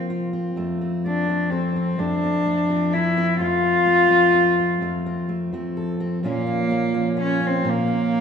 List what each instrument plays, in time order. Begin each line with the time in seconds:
Already playing: steel-string acoustic guitar F3 A#3 C4, cello C4
0.10 steel-string acoustic guitar F4
0.33 steel-string acoustic guitar C4
0.56 steel-string acoustic guitar F2 A3
0.81 steel-string acoustic guitar C4
1.06 steel-string acoustic guitar A3, cello D4
1.28 steel-string acoustic guitar F3 C4
1.50 cello C4, steel-string acoustic guitar A4
1.76 steel-string acoustic guitar C4
1.98 steel-string acoustic guitar F2 A3, cello D4
2.24 steel-string acoustic guitar C4
2.46 steel-string acoustic guitar A3
2.69 steel-string acoustic guitar F3 C4
2.93 steel-string acoustic guitar C4, cello E4
3.17 steel-string acoustic guitar C4
3.40 steel-string acoustic guitar F2 A3, cello F4
3.64 steel-string acoustic guitar C4
3.86 steel-string acoustic guitar A3
4.09 steel-string acoustic guitar F3 C4
4.34 steel-string acoustic guitar C4
4.59 steel-string acoustic guitar C4
4.81 steel-string acoustic guitar F2 A3
5.06 steel-string acoustic guitar C4
5.29 steel-string acoustic guitar A3
5.53 steel-string acoustic guitar F3 C4
5.77 steel-string acoustic guitar A4
6.00 steel-string acoustic guitar C4
6.23 steel-string acoustic guitar A#2 F3 A#3 C#4 F4
6.27 cello A#3
6.47 steel-string acoustic guitar C#4
6.71 steel-string acoustic guitar A#3
6.94 steel-string acoustic guitar F3 C#4
7.17 cello C#4, steel-string acoustic guitar F4
7.40 steel-string acoustic guitar C#4
7.46 cello C4
7.64 steel-string acoustic guitar A#2 A#3
7.70 cello A#3
7.88 steel-string acoustic guitar C#4